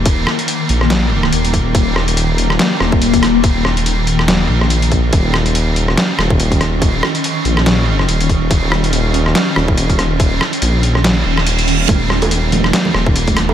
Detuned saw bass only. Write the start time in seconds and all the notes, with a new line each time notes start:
Already playing: D#1
0.69 A#1
1.33 D#1
1.75 D#1
2.80 D#1
3.65 D#1
4.49 A#1
5.13 D#1
6.19 D#1
7.45 A#1
8.08 D#1
8.51 D#1
9.56 D#1
10.62 A#1
11.25 D#1
11.89 D#1
12.94 D#1